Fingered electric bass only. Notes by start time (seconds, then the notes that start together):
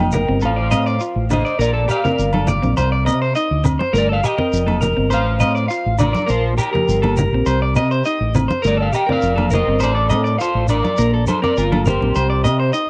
Already playing: F1
0.29 G1
0.43 A1
0.72 A2
1.16 A1
1.59 A#1
2.19 G1
2.63 A#1
2.78 C2
3.08 C3
3.51 D2
3.94 G1
4.53 F1
4.98 G1
5.12 A1
5.41 A2
5.86 A1
6.30 A#1
6.88 G1
7.32 A#1
7.46 C2
7.76 C3
8.20 A1
8.64 G1
9.23 F1
9.67 G1
9.81 A1
10.10 A2
10.55 A1
10.98 A#1
11.57 G1
12.01 A#1
12.16 C2
12.44 C3